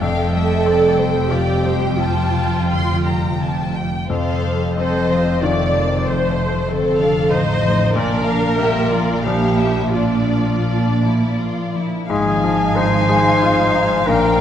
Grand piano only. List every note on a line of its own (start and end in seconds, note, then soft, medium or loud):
0.01 1.96 F2 soft
0.66 1.71 C4 soft
1.30 4.06 F4 soft
1.30 4.06 G4 soft
4.10 6.03 F2 soft
4.77 5.81 C4 soft
5.43 7.92 D#3 soft
5.43 7.93 F4 soft
7.96 9.92 A#2 soft
8.60 9.68 A#3 soft
9.26 12.06 F3 soft
9.26 12.06 D4 soft
12.10 14.04 G#2 soft
12.44 12.96 F3 soft
12.77 13.29 D#4 soft
13.09 13.62 G#4 soft
13.43 13.95 F4 soft
13.76 14.08 D#4 soft
14.09 14.41 A#2 soft